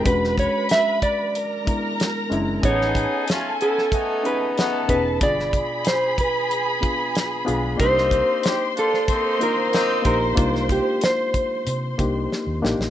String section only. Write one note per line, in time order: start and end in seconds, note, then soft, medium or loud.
0.06 1.32 B4 medium
0.06 1.32 B5 medium
1.35 2.61 A#4 medium
1.35 2.61 A#5 medium
2.63 4.53 A4 medium
2.63 4.53 G#5 loud
4.56 5.20 A4 medium
4.56 5.20 A5 medium
5.22 7.76 G#4 medium
5.22 7.76 B5 loud
7.79 12.90 C5 medium
7.79 12.90 C6 loud